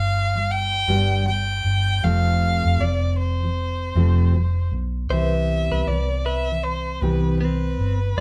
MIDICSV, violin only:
0, 0, Header, 1, 2, 480
1, 0, Start_track
1, 0, Key_signature, 0, "major"
1, 0, Tempo, 767656
1, 1274, Time_signature, 4, 2, 24, 8
1, 5130, End_track
2, 0, Start_track
2, 0, Title_t, "Violin"
2, 0, Program_c, 0, 40
2, 0, Note_on_c, 0, 77, 87
2, 315, Note_on_c, 0, 79, 93
2, 324, Note_off_c, 0, 77, 0
2, 794, Note_off_c, 0, 79, 0
2, 798, Note_on_c, 0, 79, 81
2, 1275, Note_on_c, 0, 77, 85
2, 1284, Note_off_c, 0, 79, 0
2, 1752, Note_on_c, 0, 74, 73
2, 1762, Note_off_c, 0, 77, 0
2, 1993, Note_off_c, 0, 74, 0
2, 1999, Note_on_c, 0, 72, 69
2, 2931, Note_off_c, 0, 72, 0
2, 3196, Note_on_c, 0, 76, 77
2, 3674, Note_on_c, 0, 74, 70
2, 3684, Note_off_c, 0, 76, 0
2, 3910, Note_on_c, 0, 76, 75
2, 3919, Note_off_c, 0, 74, 0
2, 4146, Note_on_c, 0, 72, 72
2, 4155, Note_off_c, 0, 76, 0
2, 4390, Note_on_c, 0, 71, 68
2, 4400, Note_off_c, 0, 72, 0
2, 4623, Note_off_c, 0, 71, 0
2, 4627, Note_on_c, 0, 71, 73
2, 5108, Note_on_c, 0, 72, 76
2, 5118, Note_off_c, 0, 71, 0
2, 5130, Note_off_c, 0, 72, 0
2, 5130, End_track
0, 0, End_of_file